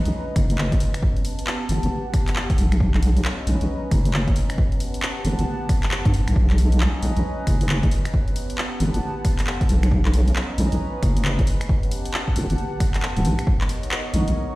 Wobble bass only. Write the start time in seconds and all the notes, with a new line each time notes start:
0.05 B1
0.36 F#1
1.69 G1
1.83 G1
2.58 B1
3.47 B1
3.61 B1
3.91 F#1
5.25 G1
5.39 G1
6.05 G2
6.28 B1
7.03 B1
7.16 B1
7.47 F#1
8.80 G1
8.94 G1
9.69 B1
10.58 B1
10.72 B1
11.03 F#1
12.36 G1
12.50 G1
13.17 D1
13.25 B1
14.14 B1
14.28 B1